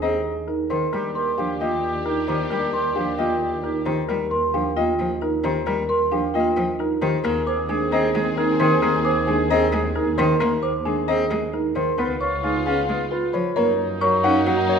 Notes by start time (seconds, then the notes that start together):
Already playing: D#2
0.02 C4 G#4 D#5 A#5
0.47 D#4 A#4
0.70 D#3 A#4 C5 C6
0.93 D#2 G3 D4 G4 A#4
1.15 G4 A#4 C6
1.38 F3 D4 G4 F5
1.60 A#3 F4 G4 D#5 G5
1.83 G4
2.05 D#4 G4 A#4
2.28 D#3 G4 C5 A#5
2.50 G3 G4 A#4
2.73 G4 A#4 C6
2.95 F3 D4 G4 F5
3.18 A#3 F4 G4 D#5 G5
3.42 G4
3.63 D#4 G4 A#4
3.86 D#3 G4 C5 A#5
4.08 G3 A#4
4.31 A#4 C6
4.54 F3 D4 G4 F5
4.77 A#3 F4 D#5 G5
4.99 F3
5.21 D#4 A#4
5.44 D#3 G4 C5 A#5
5.66 G3 A#4
5.89 A#4 C6
6.12 F3 D4 G4 F5
6.34 A#3 F4 D#5 G5
6.56 F3
6.79 D#4 A#4
7.02 D#3 G4 C5 A#5
7.24 D#2 A#3 C4 G#4 A#4
7.47 G#4 C5 D6
7.69 G#3 D4 G#4 G#5
7.92 C4 G#4 D#5 A#5
8.15 G#3 G#4
8.37 D#4 G#4 A#4
8.60 D#3 G#4 A#4 C5 C6
8.82 A#3 G#4 A#4
9.05 G#4 C5 D6
9.27 G#3 D4 G#4 G#5
9.50 C4 G#4 D#5 A#5
9.72 G#3 G#4
9.95 D#4 G#4 A#4
10.18 D#3 A#4 C5 C6
10.40 A#3 A#4
10.63 C5 D6
10.85 G#3 D4 G#4 G#5
11.08 C4 G#4 D#5 A#5
11.31 G#3
11.53 D#4 A#4
11.75 D#3 A#4 C5 C6
11.98 C#2 B3 F4 B4
12.21 F4 C#5 C#6
12.43 G#3 D#4 F4 G#4 F5
12.65 C#4 F4 G#4 F5 G#5
12.88 G#3 F4
13.11 F4 B4
13.33 F3 B4 C#5 B5
13.56 F#2 A#3 D#4 A#4 C#5 A#5
14.01 F#3 A#4 C#5 C#6
14.23 C#4 D#4 F5 F#5
14.46 F#3 F#4 F#5
14.69 C#5